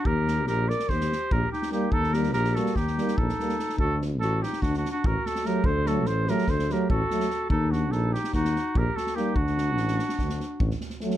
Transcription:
0.05 0.49 D#2 medium
0.05 0.46 G4 medium
0.05 0.47 A#4 loud
0.05 kick medium
0.28 snare soft
0.47 0.71 A#1 medium
0.47 0.71 G4 medium
0.47 0.70 A#4 loud
0.47 snare soft
0.69 0.92 A#4 medium
0.69 0.91 D5 medium
0.69 snare soft
0.79 snare soft
0.89 1.13 D#2 medium
0.89 1.34 G4 medium
0.89 1.34 C5 loud
0.89 kick medium
0.89 snare soft
1.01 snare soft
1.12 snare soft
1.31 1.43 A#1 medium
1.31 1.51 G4 medium
1.31 1.51 A#4 medium
1.31 kick medium
1.52 1.71 D#4 medium
1.52 1.70 G4 medium
1.52 snare soft
1.62 snare soft
1.71 1.89 G3 medium
1.71 1.89 A#3 medium
1.71 1.91 D#4 medium
1.71 1.95 G4 medium
1.71 snare soft
1.91 2.36 D#2 medium
1.91 2.15 D#4 medium
1.91 2.15 A4 loud
1.91 kick medium
2.03 snare soft
2.13 2.31 G3 medium
2.13 2.32 A#3 soft
2.13 2.33 G4 medium
2.13 2.32 A#4 medium
2.13 snare soft
2.23 snare soft
2.33 2.57 A#1 loud
2.33 2.58 G4 medium
2.33 2.56 A#4 loud
2.33 snare soft
2.44 snare soft
2.54 2.74 G3 medium
2.54 2.73 A#3 medium
2.54 2.78 F#4 medium
2.54 2.77 A4 medium
2.54 snare soft
2.66 snare soft
2.76 2.99 D#2 medium
2.76 3.19 D#4 medium
2.76 3.18 G4 medium
2.76 kick medium
2.76 snare soft
2.87 snare soft
2.98 3.15 G3 medium
2.98 3.15 A#3 medium
2.98 snare soft
3.08 snare soft
3.17 3.29 A#1 medium
3.17 3.79 D#4 medium
3.17 3.78 A4 medium
3.17 kick medium
3.29 snare soft
3.40 3.56 G3 soft
3.40 3.55 A#3 soft
3.40 snare soft
3.49 snare soft
3.59 snare soft
3.69 snare soft
3.77 4.21 D2 medium
3.77 4.00 F#4 medium
3.77 3.99 A4 medium
3.77 kick medium
4.02 snare soft
4.20 4.43 A1 loud
4.20 4.45 F#4 medium
4.20 4.44 A4 loud
4.20 snare soft
4.42 4.63 D#4 medium
4.42 4.63 G4 medium
4.42 snare soft
4.53 snare soft
4.61 4.85 D2 medium
4.61 4.76 D4 medium
4.61 4.77 F#4 medium
4.61 kick medium
4.61 snare soft
4.74 4.90 D4 medium
4.74 4.90 F#4 medium
4.74 snare soft
4.85 snare soft
4.91 5.07 D4 medium
4.91 5.07 F#4 medium
5.04 5.16 A1 medium
5.04 5.26 F#4 medium
5.04 5.28 A#4 medium
5.04 kick medium
5.26 5.47 F#4 medium
5.26 5.48 A4 medium
5.26 snare soft
5.35 snare soft
5.45 5.63 F#3 medium
5.45 5.62 A3 medium
5.45 5.65 G4 medium
5.45 5.67 A#4 medium
5.45 snare soft
5.64 6.08 D2 medium
5.64 5.88 A4 medium
5.64 5.89 C5 medium
5.64 kick medium
5.86 6.04 F#3 medium
5.86 6.03 A3 medium
5.86 6.08 F#4 medium
5.86 6.08 A4 medium
5.86 snare soft
6.05 6.29 A1 medium
6.05 6.28 A4 medium
6.05 6.31 C5 loud
6.05 snare soft
6.27 6.45 F#3 medium
6.27 6.46 A3 medium
6.27 6.50 G4 medium
6.27 6.51 A#4 medium
6.27 snare soft
6.38 snare soft
6.47 6.71 D2 medium
6.47 6.72 A4 medium
6.47 6.74 C5 medium
6.47 kick medium
6.47 snare soft
6.59 snare soft
6.70 6.87 F#3 medium
6.70 6.87 A3 medium
6.70 6.90 G4 medium
6.70 6.90 A#4 medium
6.70 snare soft
6.90 7.02 A1 loud
6.90 7.47 F#4 medium
6.90 7.46 A4 medium
6.90 kick medium
7.10 7.27 F#3 medium
7.10 7.27 A3 medium
7.10 snare soft
7.20 snare soft
7.30 snare soft
7.50 7.93 D#2 medium
7.50 7.74 D#4 medium
7.50 7.72 A4 medium
7.50 kick medium
7.71 7.96 D4 medium
7.71 7.93 F#4 medium
7.71 snare soft
7.91 8.15 A#1 medium
7.91 8.15 D#4 medium
7.91 8.14 A4 loud
7.91 snare soft
8.13 8.34 D#4 medium
8.13 8.33 G4 medium
8.13 snare soft
8.24 snare soft
8.33 8.57 D#2 medium
8.33 8.78 D#4 medium
8.33 8.79 F#4 medium
8.33 kick medium
8.33 snare soft
8.45 snare soft
8.56 snare soft
8.75 8.87 A#1 loud
8.75 8.98 G4 medium
8.75 8.97 A#4 medium
8.75 kick medium
8.96 9.18 F#4 medium
8.96 9.16 A4 medium
8.96 snare soft
9.07 snare soft
9.15 9.34 G3 medium
9.15 9.32 A#3 medium
9.15 9.39 D#4 medium
9.15 9.37 G4 medium
9.15 snare soft
9.35 9.78 D2 medium
9.35 10.83 D4 medium
9.35 10.82 F#4 loud
9.35 kick medium
9.47 snare soft
9.58 snare soft
9.77 10.00 A1 loud
9.77 snare soft
9.88 snare soft
9.99 snare soft
10.09 snare soft
10.18 10.42 D2 medium
10.18 kick medium
10.18 snare soft
10.29 snare soft
10.40 snare soft
10.60 10.72 A1 medium
10.60 kick medium
10.71 snare soft
10.81 snare soft
10.90 snare soft
11.00 11.17 F#3 medium
11.00 11.17 A3 medium
11.00 snare soft
11.10 snare soft

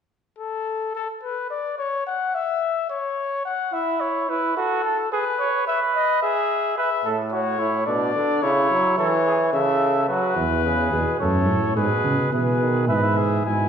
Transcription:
0.39 0.91 A4 medium
0.95 1.08 A4 medium
1.23 1.50 B4 medium
1.51 1.78 D5 medium
1.78 2.06 C#5 medium
2.07 2.36 F#5 medium
2.35 2.89 E5 medium
2.90 3.44 C#5 medium
3.45 3.75 F#5 medium
3.73 4.25 E4 medium
3.73 4.02 E5 medium
4.01 4.31 C#5 medium
4.29 4.56 E4 medium
4.29 4.57 B4 medium
4.57 4.84 F#4 medium
4.57 5.11 A4 medium
4.85 4.97 A4 medium
5.12 5.25 G#4 medium
5.12 5.66 B4 medium
5.40 5.67 C#5 medium
5.67 6.21 B4 medium
5.67 5.80 E5 medium
5.95 6.22 D#5 medium
6.23 6.77 G#4 medium
6.23 6.76 E5 medium
6.77 6.90 B4 medium
6.77 7.13 E5 medium
7.05 7.56 A2 medium
7.05 7.17 A4 medium
7.32 7.61 F#4 medium
7.32 7.83 C#5 medium
7.59 7.86 A2 medium
7.59 7.86 E4 medium
7.87 8.14 B2 medium
7.87 8.44 D4 medium
7.87 8.44 D5 medium
8.15 8.42 D3 medium
8.42 8.70 C#3 medium
8.42 8.98 E4 medium
8.42 8.98 C#5 medium
8.71 8.98 F#3 medium
8.98 9.52 E3 medium
8.98 9.11 A4 medium
8.98 9.53 C#5 medium
9.26 9.39 G#4 medium
9.53 10.08 C#3 medium
9.53 10.08 A4 medium
9.53 10.08 E5 medium
10.08 10.38 F#3 medium
10.08 10.44 F#4 medium
10.08 11.18 B4 medium
10.36 10.88 E2 medium
10.36 10.64 E3 medium
10.64 10.94 C#3 medium
10.64 11.16 G#4 medium
10.92 11.05 E2 medium
10.92 11.20 B2 medium
11.20 11.50 F#2 medium
11.20 11.76 A2 medium
11.20 11.76 A4 medium
11.20 11.75 C#5 medium
11.48 11.75 A2 medium
11.76 11.89 G#2 medium
11.76 12.31 B2 medium
11.76 12.31 G#4 medium
11.76 12.31 B4 medium
12.04 12.17 C#3 medium
12.32 12.90 B2 medium
12.32 12.60 E3 medium
12.32 12.87 G#4 medium
12.32 12.88 B4 medium
12.61 12.90 D#3 medium
12.88 13.46 G#2 medium
12.88 13.45 E3 medium
12.88 13.19 B4 medium
12.88 12.97 E5 medium
12.96 13.04 D#5 medium
13.03 13.45 E5 medium
13.17 13.45 G#4 medium
13.45 13.69 G#2 medium
13.45 13.69 B2 medium
13.45 13.69 E4 medium
13.45 13.69 G#5 medium

